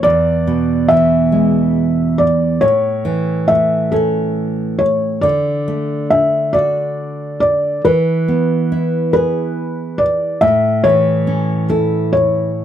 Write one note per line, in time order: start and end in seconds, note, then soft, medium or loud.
0.03 2.58 E2 medium
0.03 0.92 D5 medium
0.47 2.15 B2 soft
0.88 2.58 E3 soft
0.88 2.22 E5 medium
1.32 2.57 G#3 medium
2.18 2.63 D5 medium
2.61 5.19 A2 medium
2.61 3.50 C#5 medium
3.05 4.75 E3 soft
3.48 5.19 A3 soft
3.48 3.93 E5 medium
3.92 5.19 C#4 soft
3.92 4.82 A4 medium
4.79 5.24 C#5 medium
5.21 7.80 D3 medium
5.21 6.06 D5 medium
5.68 7.38 A3 soft
6.10 7.81 D4 soft
6.10 6.55 E5 medium
6.53 7.81 F#4 soft
6.53 7.39 D5 medium
7.40 7.81 D5 medium
7.85 10.38 E3 medium
7.85 9.12 B4 medium
8.28 9.95 B3 soft
8.72 10.38 E4 soft
9.13 10.38 G#4 soft
9.13 10.01 B4 medium
9.98 10.42 D5 medium
10.41 12.65 A2 medium
10.41 10.85 E5 medium
10.84 12.51 E3 soft
10.84 11.65 C#5 medium
11.27 12.65 C#4 soft
11.69 12.65 E4 medium
11.69 12.13 A4 medium
12.13 12.65 C#5 medium